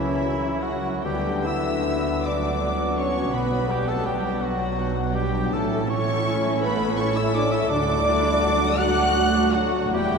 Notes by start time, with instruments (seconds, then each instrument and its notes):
Already playing: double bass section C#2, cello section C#3, harp C#3 F#3 A#4 E5, french horn section E3, viola section F#3 C#4, bassoon C#4, flute section E4, cor anglais E4, violin section E4 E5
0.24 harp A#4
0.61 french horn section F#3, harp E4, cor anglais F#4, flute section F#4, violin section F#5
1.02 double bass section D2, cello section D3, harp D3, viola section F#3 B3, french horn section G3, bassoon B3, violin section D4 F#4 G5, flute section G4, cor anglais G4
1.45 harp D4, french horn section E4, flute section E5, cor anglais E5, violin section E6
1.88 harp F#4
2.24 bassoon B3, french horn section D4, flute section D5, cor anglais D5, harp B5, violin section D6
2.63 harp F#4
2.97 french horn section C#4, harp B4, cor anglais C#5, flute section C#5, violin section C#6
3.34 double bass section B1, cello section B2, harp B2, french horn section B3, flute section B4, cor anglais B4, violin section B5
3.70 harp F#3, french horn section G3, cor anglais G4, flute section G4, violin section G5
3.87 french horn section A3, flute section A4, cor anglais A4, violin section A5
4.05 french horn section G3, flute section G4, cor anglais G4, harp B4, violin section G5
4.41 french horn section F#3, flute section F#4, cor anglais F#4, harp D5, violin section F#5
4.78 harp B4
5.13 french horn section G3, harp D4, flute section G4, cor anglais G4, violin section G5
5.52 double bass section A1, harp A2, cello section A2, french horn section A3, viola section A3 E4, bassoon C#4, violin section E4 A4 A5, flute section A4, cor anglais A4
5.88 harp A3, french horn section C#4, flute section C#5, cor anglais C#5, violin section C#6
6.26 harp E5
6.61 french horn section B3, harp A4, flute section B4, cor anglais B4, violin section B5
6.97 french horn section C#4, flute section C#5, cor anglais C#5, harp E5, violin section C#6
7.17 french horn section E4, flute section E5, cor anglais E5, violin section E6
7.35 french horn section D4, harp E4, cor anglais D5, flute section D5, violin section D6
7.51 french horn section E4, flute section E5, cor anglais E5, violin section E6
7.68 cello section D2, double bass section D2, harp D3, viola section F#3 D4, bassoon D4, french horn section D4, violin section F#4 D6, flute section D5, cor anglais D5
8.06 harp A3, bassoon E4
8.42 bassoon F#4
8.77 french horn section F#4, flute section F#5, cor anglais F#5, harp F#5, violin section F#6
9.14 harp D5
9.52 french horn section F#3, cor anglais F#4, harp F#4, flute section F#4, violin section F#5
9.92 double bass section E1, cello section E2, harp E3, viola section G3 B3, french horn section G3, bassoon E4, violin section E4 G4 G5, flute section G4, cor anglais G4